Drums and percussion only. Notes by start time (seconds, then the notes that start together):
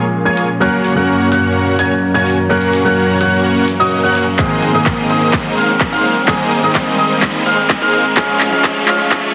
0.37 open hi-hat
0.85 open hi-hat
1.32 open hi-hat
1.79 open hi-hat
2.26 open hi-hat
2.62 open hi-hat
2.73 open hi-hat
3.21 open hi-hat
3.68 open hi-hat
4.15 open hi-hat
4.39 kick, clap, closed hi-hat
4.51 closed hi-hat
4.63 open hi-hat
4.74 closed hi-hat
4.86 kick, clap, closed hi-hat
4.98 closed hi-hat
5.10 open hi-hat
5.21 closed hi-hat
5.33 kick, clap, closed hi-hat
5.45 closed hi-hat
5.57 open hi-hat
5.69 closed hi-hat
5.81 kick, clap, closed hi-hat
5.92 closed hi-hat
6.04 open hi-hat
6.16 closed hi-hat
6.28 kick, clap, closed hi-hat
6.40 open hi-hat
6.51 open hi-hat
6.63 closed hi-hat
6.75 kick, clap, closed hi-hat
6.87 closed hi-hat
6.99 open hi-hat
7.11 closed hi-hat
7.22 kick, clap, closed hi-hat
7.34 closed hi-hat
7.46 open hi-hat
7.58 closed hi-hat
7.70 kick, clap, closed hi-hat
7.82 closed hi-hat
7.93 open hi-hat
8.05 closed hi-hat
8.17 kick, clap, closed hi-hat
8.29 closed hi-hat
8.41 clap, open hi-hat
8.52 closed hi-hat
8.64 kick, clap, closed hi-hat
8.76 closed hi-hat
8.88 clap, open hi-hat
9.00 closed hi-hat
9.11 kick, clap, closed hi-hat
9.23 closed hi-hat